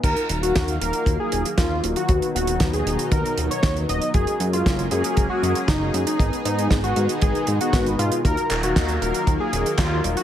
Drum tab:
CC |x---------------|----------------|----------------|----------------|
HH |xxxxxxxxx-xxx-xx|xxxxxxxxxxxxxxxx|xxxxxxxxx-xxx-xx|xxxxxxxxxxxxxxxx|
CP |----------------|----------------|----------------|----------------|
SD |----o-------o---|----o-------o---|----o-------o---|----o-------o---|
BD |o---o---o---o---|o---o---o---o---|o---o---o---o---|o---o---o---o---|

CC |----------------|
HH |xxxxxxxxx-xxx-xx|
CP |--x-x-------x---|
SD |----o-------o---|
BD |o---o---o---o---|